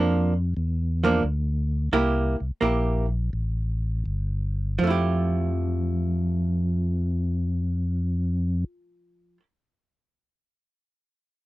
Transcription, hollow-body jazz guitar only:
0.00 0.32 F3 medium
0.00 0.33 A#3 medium
0.00 0.33 D4 medium
1.04 1.22 F3 medium
1.04 1.22 A#3 medium
1.04 1.23 D4 medium
1.93 2.35 A#3 medium
1.93 2.35 E4 medium
1.93 2.35 G4 medium
2.61 3.05 A#3 medium
2.61 3.05 E4 medium
2.61 3.06 G4 soft
4.79 9.37 F3 medium
4.84 9.40 A3 medium
4.84 9.41 E4 medium
4.90 9.43 G4 medium

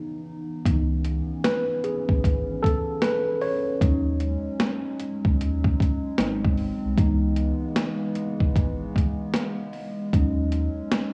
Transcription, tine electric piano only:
0.00 0.66 E3 soft
0.00 0.66 B3 soft
0.00 0.67 D#4 medium
0.66 1.22 E3 soft
0.66 1.23 B3 soft
0.66 1.23 D#4 medium
1.44 1.85 B4 medium
1.84 2.59 G#4 medium
2.63 2.81 A4 medium
3.02 3.43 B4 loud
3.42 4.96 C#5 medium
3.82 4.38 F#3 medium
3.82 4.39 C#4 soft
3.82 4.39 D#4 medium
6.19 6.93 F#3 medium
6.19 6.94 C4 medium
6.19 6.94 D#4 medium
6.98 8.12 E3 soft
6.98 8.12 B3 soft
6.98 8.13 D#4 medium
10.13 11.13 F#3 soft
10.13 11.13 C#4 soft
10.13 11.13 D#4 soft

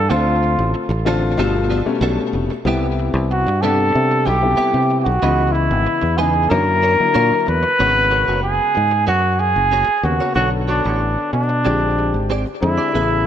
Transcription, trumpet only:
0.00 0.11 A4 medium
0.10 0.74 F4 medium
3.31 3.63 F#4 medium
3.62 4.27 A4 medium
4.26 4.99 G4 medium
5.00 5.53 F#4 medium
5.00 5.04 G4 medium
5.52 6.19 E4 medium
6.18 6.51 G#4 medium
6.49 7.47 A#4 loud
7.49 8.41 B4 loud
8.43 9.04 G#4 loud
9.08 9.41 F#4 loud
9.40 10.06 G#4 medium
10.04 10.34 F#4 medium
10.35 10.50 F#4 medium
10.70 11.30 D4 medium
11.33 12.31 D4 medium
12.61 13.27 E4 medium

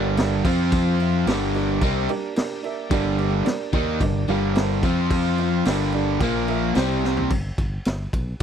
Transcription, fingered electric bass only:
0.00 0.41 G1 loud
0.44 1.23 F2 medium
1.27 1.78 G1 medium
1.81 2.07 C2 loud
2.91 3.42 G1 loud
3.46 muted fingered electric bass stroke soft
3.73 3.99 D#2 medium
4.00 4.26 G1 medium
4.28 4.80 G1 medium
4.83 5.61 F2 loud
5.66 6.17 G1 medium
6.20 6.72 A#1 medium
6.76 7.27 C2 loud
7.31 7.50 G1 medium
7.58 7.77 G1 medium
7.86 8.06 G1 medium
8.13 8.33 B1 medium

